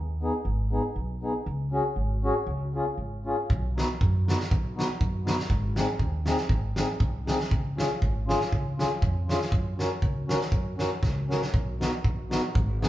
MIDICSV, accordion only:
0, 0, Header, 1, 2, 480
1, 0, Start_track
1, 0, Key_signature, 6, "major"
1, 0, Tempo, 504202
1, 436, Time_signature, 2, 2, 24, 8
1, 12267, End_track
2, 0, Start_track
2, 0, Title_t, "Accordion"
2, 0, Program_c, 0, 21
2, 206, Note_on_c, 0, 59, 53
2, 216, Note_on_c, 0, 63, 54
2, 225, Note_on_c, 0, 68, 68
2, 310, Note_off_c, 0, 59, 0
2, 315, Note_off_c, 0, 63, 0
2, 320, Note_off_c, 0, 68, 0
2, 675, Note_on_c, 0, 59, 50
2, 682, Note_on_c, 0, 63, 49
2, 694, Note_on_c, 0, 68, 66
2, 783, Note_off_c, 0, 59, 0
2, 786, Note_off_c, 0, 63, 0
2, 792, Note_off_c, 0, 68, 0
2, 1159, Note_on_c, 0, 59, 61
2, 1169, Note_on_c, 0, 63, 58
2, 1178, Note_on_c, 0, 68, 62
2, 1264, Note_off_c, 0, 59, 0
2, 1269, Note_off_c, 0, 63, 0
2, 1273, Note_off_c, 0, 68, 0
2, 1636, Note_on_c, 0, 61, 67
2, 1646, Note_on_c, 0, 66, 51
2, 1657, Note_on_c, 0, 68, 73
2, 1740, Note_off_c, 0, 61, 0
2, 1745, Note_off_c, 0, 66, 0
2, 1751, Note_off_c, 0, 68, 0
2, 2127, Note_on_c, 0, 61, 76
2, 2139, Note_on_c, 0, 66, 64
2, 2149, Note_on_c, 0, 68, 84
2, 2225, Note_off_c, 0, 61, 0
2, 2232, Note_off_c, 0, 66, 0
2, 2237, Note_off_c, 0, 68, 0
2, 2614, Note_on_c, 0, 61, 61
2, 2622, Note_on_c, 0, 65, 58
2, 2628, Note_on_c, 0, 68, 58
2, 2711, Note_off_c, 0, 61, 0
2, 2715, Note_off_c, 0, 65, 0
2, 2718, Note_off_c, 0, 68, 0
2, 3098, Note_on_c, 0, 61, 57
2, 3106, Note_on_c, 0, 65, 57
2, 3119, Note_on_c, 0, 68, 66
2, 3198, Note_off_c, 0, 61, 0
2, 3202, Note_off_c, 0, 65, 0
2, 3209, Note_off_c, 0, 68, 0
2, 3586, Note_on_c, 0, 59, 51
2, 3589, Note_on_c, 0, 63, 56
2, 3603, Note_on_c, 0, 66, 73
2, 3687, Note_off_c, 0, 59, 0
2, 3688, Note_off_c, 0, 63, 0
2, 3695, Note_off_c, 0, 66, 0
2, 4067, Note_on_c, 0, 59, 59
2, 4075, Note_on_c, 0, 63, 55
2, 4083, Note_on_c, 0, 66, 66
2, 4168, Note_off_c, 0, 59, 0
2, 4172, Note_off_c, 0, 63, 0
2, 4176, Note_off_c, 0, 66, 0
2, 4531, Note_on_c, 0, 59, 64
2, 4543, Note_on_c, 0, 63, 49
2, 4548, Note_on_c, 0, 66, 70
2, 4637, Note_off_c, 0, 59, 0
2, 4643, Note_off_c, 0, 63, 0
2, 4645, Note_off_c, 0, 66, 0
2, 4996, Note_on_c, 0, 59, 56
2, 5008, Note_on_c, 0, 63, 62
2, 5020, Note_on_c, 0, 66, 69
2, 5106, Note_off_c, 0, 59, 0
2, 5111, Note_off_c, 0, 63, 0
2, 5118, Note_off_c, 0, 66, 0
2, 5483, Note_on_c, 0, 60, 65
2, 5491, Note_on_c, 0, 63, 50
2, 5504, Note_on_c, 0, 68, 71
2, 5586, Note_off_c, 0, 60, 0
2, 5590, Note_off_c, 0, 63, 0
2, 5596, Note_off_c, 0, 68, 0
2, 5954, Note_on_c, 0, 60, 69
2, 5965, Note_on_c, 0, 63, 63
2, 5972, Note_on_c, 0, 68, 71
2, 6059, Note_off_c, 0, 60, 0
2, 6064, Note_off_c, 0, 63, 0
2, 6068, Note_off_c, 0, 68, 0
2, 6434, Note_on_c, 0, 60, 59
2, 6441, Note_on_c, 0, 63, 44
2, 6452, Note_on_c, 0, 68, 58
2, 6539, Note_off_c, 0, 60, 0
2, 6543, Note_off_c, 0, 63, 0
2, 6548, Note_off_c, 0, 68, 0
2, 6914, Note_on_c, 0, 60, 59
2, 6919, Note_on_c, 0, 63, 57
2, 6927, Note_on_c, 0, 68, 65
2, 7021, Note_off_c, 0, 60, 0
2, 7024, Note_off_c, 0, 63, 0
2, 7028, Note_off_c, 0, 68, 0
2, 7398, Note_on_c, 0, 61, 57
2, 7407, Note_on_c, 0, 65, 52
2, 7417, Note_on_c, 0, 68, 63
2, 7505, Note_off_c, 0, 61, 0
2, 7510, Note_off_c, 0, 65, 0
2, 7515, Note_off_c, 0, 68, 0
2, 7871, Note_on_c, 0, 61, 59
2, 7882, Note_on_c, 0, 65, 67
2, 7893, Note_on_c, 0, 68, 82
2, 7982, Note_off_c, 0, 61, 0
2, 7987, Note_off_c, 0, 65, 0
2, 7993, Note_off_c, 0, 68, 0
2, 8361, Note_on_c, 0, 61, 57
2, 8365, Note_on_c, 0, 65, 59
2, 8374, Note_on_c, 0, 68, 62
2, 8466, Note_off_c, 0, 61, 0
2, 8467, Note_off_c, 0, 65, 0
2, 8472, Note_off_c, 0, 68, 0
2, 8836, Note_on_c, 0, 61, 64
2, 8842, Note_on_c, 0, 65, 63
2, 8854, Note_on_c, 0, 68, 68
2, 8940, Note_off_c, 0, 61, 0
2, 8942, Note_off_c, 0, 65, 0
2, 8948, Note_off_c, 0, 68, 0
2, 9312, Note_on_c, 0, 61, 64
2, 9319, Note_on_c, 0, 66, 58
2, 9326, Note_on_c, 0, 70, 65
2, 9416, Note_off_c, 0, 61, 0
2, 9420, Note_off_c, 0, 66, 0
2, 9424, Note_off_c, 0, 70, 0
2, 9782, Note_on_c, 0, 61, 64
2, 9788, Note_on_c, 0, 66, 66
2, 9801, Note_on_c, 0, 70, 72
2, 9891, Note_off_c, 0, 61, 0
2, 9893, Note_off_c, 0, 66, 0
2, 9900, Note_off_c, 0, 70, 0
2, 10255, Note_on_c, 0, 61, 49
2, 10264, Note_on_c, 0, 66, 52
2, 10276, Note_on_c, 0, 70, 65
2, 10367, Note_off_c, 0, 61, 0
2, 10372, Note_off_c, 0, 66, 0
2, 10378, Note_off_c, 0, 70, 0
2, 10740, Note_on_c, 0, 61, 67
2, 10753, Note_on_c, 0, 66, 61
2, 10762, Note_on_c, 0, 70, 65
2, 10854, Note_off_c, 0, 61, 0
2, 10861, Note_off_c, 0, 66, 0
2, 10865, Note_off_c, 0, 70, 0
2, 11229, Note_on_c, 0, 59, 60
2, 11234, Note_on_c, 0, 63, 51
2, 11242, Note_on_c, 0, 66, 64
2, 11340, Note_off_c, 0, 59, 0
2, 11343, Note_off_c, 0, 63, 0
2, 11347, Note_off_c, 0, 66, 0
2, 11704, Note_on_c, 0, 59, 65
2, 11713, Note_on_c, 0, 63, 65
2, 11721, Note_on_c, 0, 66, 78
2, 11819, Note_off_c, 0, 59, 0
2, 11823, Note_off_c, 0, 63, 0
2, 11827, Note_off_c, 0, 66, 0
2, 12198, Note_on_c, 0, 59, 70
2, 12212, Note_on_c, 0, 63, 58
2, 12221, Note_on_c, 0, 68, 75
2, 12267, Note_off_c, 0, 59, 0
2, 12267, Note_off_c, 0, 63, 0
2, 12267, Note_off_c, 0, 68, 0
2, 12267, End_track
0, 0, End_of_file